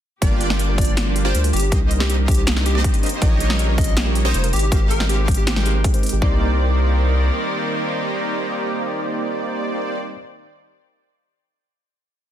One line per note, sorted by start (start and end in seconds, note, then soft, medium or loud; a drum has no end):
0.21 1.33 G1 medium
0.21 1.71 F3 medium
0.21 0.48 G3 medium
0.21 1.23 A#3 medium
0.21 0.48 A#3 medium
0.21 0.27 A#3 medium
0.21 3.19 A#3 medium
0.21 1.23 D4 medium
0.21 0.48 D4 medium
0.21 1.23 F4 medium
0.21 0.48 F4 medium
0.21 1.23 G4 medium
0.21 1.70 G4 medium
0.21 0.49 A#4 medium
0.21 1.23 D5 medium
0.21 kick loud
0.21 closed hi-hat medium
0.31 0.36 A#3 medium
0.41 0.46 G4 medium
0.41 closed hi-hat medium
0.49 0.75 G3 loud
0.49 0.76 A#3 medium
0.49 0.55 D4 loud
0.49 0.76 D4 medium
0.49 0.76 F4 medium
0.49 0.76 A#4 loud
0.49 snare medium
0.59 0.64 A#3 medium
0.59 closed hi-hat medium
0.69 0.72 A#4 medium
0.77 1.04 G3 medium
0.77 1.04 A#3 medium
0.77 0.86 F4 loud
0.77 0.84 D5 medium
0.77 kick loud
0.77 closed hi-hat soft
0.81 closed hi-hat medium
0.85 0.95 D4 medium
0.85 0.94 D5 medium
0.85 closed hi-hat medium
0.97 1.02 A#3 medium
0.97 snare loud
0.97 closed hi-hat medium
1.05 1.41 G3 loud
1.05 1.41 A#3 medium
1.05 1.11 A#3 medium
1.05 1.42 D4 medium
1.05 1.42 F4 medium
1.05 1.42 A#4 loud
1.16 1.21 G4 medium
1.16 closed hi-hat medium
1.25 1.34 A#3 medium
1.25 1.34 D4 medium
1.25 1.30 D4 loud
1.25 1.34 F4 medium
1.25 1.34 G4 medium
1.25 1.51 C5 medium
1.25 1.34 D5 medium
1.34 1.52 D2 loud
1.34 1.39 A#3 medium
1.34 closed hi-hat medium
1.43 1.57 G3 medium
1.43 1.57 A#3 medium
1.43 1.57 D4 medium
1.43 1.58 F4 medium
1.43 1.47 A#4 medium
1.43 1.58 A#4 medium
1.43 closed hi-hat medium
1.53 1.70 G1 loud
1.53 1.61 F4 loud
1.53 1.76 G4 medium
1.53 closed hi-hat medium
1.56 closed hi-hat medium
1.60 1.70 D4 medium
1.60 closed hi-hat medium
1.71 2.83 C2 loud
1.71 4.50 D#3 medium
1.71 1.97 G3 medium
1.71 2.73 A#3 medium
1.71 1.77 A#3 medium
1.71 1.98 C4 medium
1.71 1.98 D4 medium
1.71 2.73 D#4 medium
1.71 1.98 D#4 medium
1.71 2.73 G4 medium
1.71 1.98 A#4 medium
1.71 2.73 C5 medium
1.71 2.73 D#5 medium
1.71 kick loud
1.71 closed hi-hat medium
1.81 1.86 A#3 medium
1.91 1.96 D#4 medium
1.91 closed hi-hat medium
1.99 2.25 G3 medium
1.99 2.26 C4 medium
1.99 2.05 C4 loud
1.99 2.26 D4 medium
1.99 2.26 D#4 medium
1.99 2.06 G4 medium
1.99 2.26 A#4 loud
1.99 snare medium
2.10 2.14 A#3 medium
2.10 2.16 G4 medium
2.10 closed hi-hat medium
2.19 2.22 G4 medium
2.27 2.54 G3 medium
2.27 2.54 C4 medium
2.27 2.35 D4 loud
2.27 2.54 D4 medium
2.27 2.54 D#4 medium
2.27 2.34 G4 medium
2.27 kick loud
2.27 closed hi-hat soft
2.31 closed hi-hat medium
2.34 2.45 C4 medium
2.34 2.44 G4 medium
2.34 closed hi-hat medium
2.47 2.52 A#3 medium
2.47 snare loud
2.47 closed hi-hat medium
2.55 2.91 G3 loud
2.55 2.61 A#3 medium
2.55 2.91 C4 medium
2.55 2.91 D4 medium
2.55 2.92 D#4 medium
2.55 2.92 A#4 loud
2.55 snare medium
2.66 2.71 D#4 medium
2.66 2.94 G4 medium
2.66 closed hi-hat medium
2.75 3.20 A#3 medium
2.75 2.80 C4 loud
2.75 3.20 D#4 medium
2.75 3.20 G4 medium
2.75 3.20 C5 medium
2.75 3.20 D#5 loud
2.84 2.89 A#3 medium
2.84 kick loud
2.84 closed hi-hat medium
2.93 3.07 G3 medium
2.93 3.07 C4 medium
2.93 3.07 D4 medium
2.93 3.08 D#4 medium
2.93 2.97 G4 medium
2.93 3.08 A#4 medium
2.93 closed hi-hat medium
3.03 3.11 D4 loud
3.03 closed hi-hat medium
3.06 closed hi-hat medium
3.09 3.20 C4 medium
3.09 closed hi-hat medium
3.21 4.33 A#1 loud
3.21 4.52 C#3 medium
3.21 3.47 G3 medium
3.21 4.52 G3 medium
3.21 3.27 A#3 medium
3.21 4.23 A#3 medium
3.21 3.48 C#4 medium
3.21 3.48 D#4 medium
3.21 4.23 D#4 medium
3.21 3.48 F4 medium
3.21 4.23 G4 medium
3.21 3.48 A#4 medium
3.21 4.23 C#5 medium
3.21 4.23 D#5 medium
3.21 kick loud
3.21 closed hi-hat medium
3.32 3.36 A#3 medium
3.40 3.46 G4 medium
3.40 closed hi-hat medium
3.49 3.75 G3 loud
3.49 3.76 C#4 medium
3.49 3.55 C#4 loud
3.49 3.76 D#4 medium
3.49 3.76 F4 medium
3.49 3.76 A#4 loud
3.49 snare medium
3.59 3.64 A#3 medium
3.59 closed hi-hat medium
3.69 3.72 A#4 medium
3.77 4.04 G3 medium
3.77 4.04 C#4 medium
3.77 3.86 D#4 loud
3.77 4.04 D#4 medium
3.77 4.04 F4 medium
3.77 3.84 D#5 medium
3.77 kick loud
3.77 closed hi-hat soft
3.81 closed hi-hat medium
3.84 3.95 C#4 medium
3.84 3.94 D#5 medium
3.84 closed hi-hat medium
3.97 4.02 A#3 medium
3.97 snare loud
3.97 closed hi-hat medium
4.05 4.41 G3 loud
4.05 4.11 A#3 medium
4.05 4.41 C#4 medium
4.05 4.42 D#4 medium
4.05 4.42 F4 medium
4.05 4.42 A#4 loud
4.15 4.21 G4 medium
4.15 closed hi-hat medium
4.25 4.34 A#3 medium
4.25 4.30 C#4 loud
4.25 4.34 D#4 medium
4.25 4.34 G4 medium
4.25 4.51 C5 medium
4.25 4.34 C#5 medium
4.25 4.34 D#5 medium
4.34 4.52 F1 loud
4.34 4.39 A#3 medium
4.34 closed hi-hat medium
4.43 4.57 G#3 medium
4.43 4.57 C4 medium
4.43 4.58 D#4 medium
4.43 4.58 G4 medium
4.43 4.47 A#4 medium
4.43 4.58 A#4 medium
4.43 closed hi-hat medium
4.53 4.70 G#1 loud
4.53 6.20 C3 medium
4.53 6.20 G#3 medium
4.53 6.20 G4 loud
4.53 4.61 G4 loud
4.53 4.71 G4 medium
4.53 closed hi-hat soft
4.56 closed hi-hat medium
4.59 4.70 D#4 medium
4.59 closed hi-hat medium
4.71 5.83 G#1 loud
4.71 4.97 G#3 medium
4.71 5.73 G#3 medium
4.71 4.98 C4 medium
4.71 4.77 C4 medium
4.71 4.98 D#4 medium
4.71 5.73 D#4 medium
4.71 4.89 G4 medium
4.71 5.73 G4 medium
4.71 4.98 G4 medium
4.71 4.98 A#4 medium
4.71 5.73 C5 medium
4.71 5.73 F5 medium
4.71 kick loud
4.71 closed hi-hat medium
4.81 4.86 C4 medium
4.90 4.96 G#4 medium
4.90 5.04 A#4 loud
4.90 closed hi-hat medium
4.99 5.26 G#3 loud
4.99 5.26 C4 medium
4.99 5.05 D#4 loud
4.99 5.26 D#4 medium
4.99 5.26 G4 medium
4.99 5.27 A#4 loud
4.99 snare medium
5.09 5.14 C4 medium
5.09 5.22 G4 medium
5.09 closed hi-hat medium
5.19 5.22 C5 medium
5.27 5.54 G#3 medium
5.27 5.54 C4 medium
5.27 5.54 D#4 medium
5.27 5.36 G4 loud
5.27 5.54 G4 medium
5.27 kick loud
5.27 closed hi-hat soft
5.31 closed hi-hat medium
5.34 5.45 D#4 medium
5.34 5.43 G4 medium
5.34 closed hi-hat medium
5.47 5.52 C4 medium
5.47 5.53 G4 medium
5.47 snare loud
5.47 closed hi-hat medium
5.56 5.63 G#3 loud
5.56 5.64 C4 medium
5.56 5.61 C4 medium
5.56 5.64 D#4 medium
5.56 5.64 G4 medium
5.56 5.64 A#4 loud
5.56 snare medium
5.65 5.91 G#3 medium
5.65 5.92 C4 medium
5.65 5.92 D#4 medium
5.65 5.92 G4 medium
5.65 5.71 G#4 medium
5.65 5.92 A#4 medium
5.65 closed hi-hat medium
5.75 5.80 C4 medium
5.84 5.89 G#4 loud
5.84 kick loud
5.84 closed hi-hat medium
5.93 6.19 G#3 medium
5.93 6.20 C4 medium
5.93 6.20 D#4 medium
5.93 6.20 G4 medium
5.93 6.20 A#4 medium
5.93 5.99 C5 medium
5.93 closed hi-hat medium
6.03 6.08 C4 medium
6.03 closed hi-hat soft
6.06 closed hi-hat medium
6.09 6.21 G#1 medium
6.09 6.17 G4 medium
6.09 closed hi-hat medium
6.19 7.30 C2 medium
6.19 9.98 D#3 medium
6.19 10.14 G3 medium
6.19 6.39 A#3 medium
6.19 9.98 A#3 medium
6.19 10.16 C4 medium
6.19 9.98 D#4 medium
6.19 9.98 G4 medium
6.19 9.98 A#4 loud
6.19 9.98 C5 medium
6.19 9.98 D5 loud
6.19 9.98 D5 medium
6.19 10.17 D5 loud
6.19 10.17 D5 medium
6.19 kick loud
6.24 10.19 D#4 medium
6.24 10.20 A#4 loud